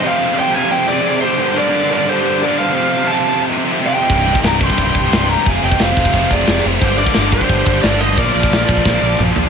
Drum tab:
CC |----------------|----------------|----------------|x-x-x-x-x-x-x-x-|
SD |----------------|----------------|----------------|----o-------o---|
T2 |----------------|----------------|----------------|----------------|
FT |----------------|----------------|----------------|----------------|
BD |----------------|----------------|----------------|o--o--ooo-o-----|

CC |x-x-x-x-x-x-x-x-|x-x-x-x-x-x-x-x-|x-x-x-x---------|
SD |----o-------o---|----o-------o---|----o---o-------|
T2 |----------------|----------------|------------o---|
FT |----------------|----------------|--------------o-|
BD |o--o--ooo-o-----|o--o--ooo-o-----|o--o--ooo-------|